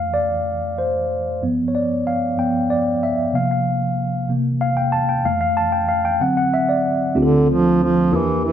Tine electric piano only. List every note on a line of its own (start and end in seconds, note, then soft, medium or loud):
0.00 0.42 F2 medium
0.00 0.42 E3 soft
0.00 0.43 A3 soft
0.00 1.44 F5 medium
0.14 0.80 D5 loud
0.78 1.08 C5 medium
1.42 2.34 G2 medium
1.42 2.34 F3 soft
1.42 2.34 B3 medium
1.68 1.75 C#5 medium
1.75 2.07 D5 medium
2.07 2.39 F5 medium
2.37 2.66 G2 soft
2.37 2.66 F3 soft
2.37 2.67 B3 soft
2.37 2.71 G5 medium
2.70 3.00 D5 medium
3.03 3.35 E5 medium
3.33 4.25 C3 medium
3.33 4.26 F3 medium
3.33 4.26 A#3 medium
3.33 3.49 F5 medium
3.51 3.80 F5 medium
4.29 4.72 C3 soft
4.29 4.72 E3 soft
4.29 4.72 A#3 medium
4.61 4.78 F5 loud
4.77 4.92 G5 medium
4.92 5.09 A5 loud
5.09 5.25 G5 medium
5.24 6.16 F2 medium
5.24 6.17 E3 soft
5.24 6.17 A3 medium
5.24 5.40 F5 loud
5.41 5.57 F5 medium
5.57 5.73 A5 loud
5.72 5.89 G5 medium
5.89 6.05 F5 medium
6.05 6.21 G5 loud
6.20 7.12 D3 soft
6.20 7.12 F#3 soft
6.20 7.12 C4 medium
6.20 6.36 F#5 medium
6.37 6.53 F#5 medium
6.54 6.69 E5 loud
6.69 7.13 D5 medium
7.15 8.07 D2 medium
7.15 8.07 D3 medium
7.15 7.96 A3 medium
7.15 7.96 C4 medium
7.15 7.96 D4 medium
7.15 7.97 F4 medium
7.15 7.23 G4 medium
7.22 8.00 A4 medium
8.11 8.52 E2 medium
8.11 8.52 E3 medium
8.11 8.52 A#3 medium
8.11 8.52 D4 medium
8.11 8.52 E4 medium
8.11 8.52 G4 medium
8.11 8.52 A#4 medium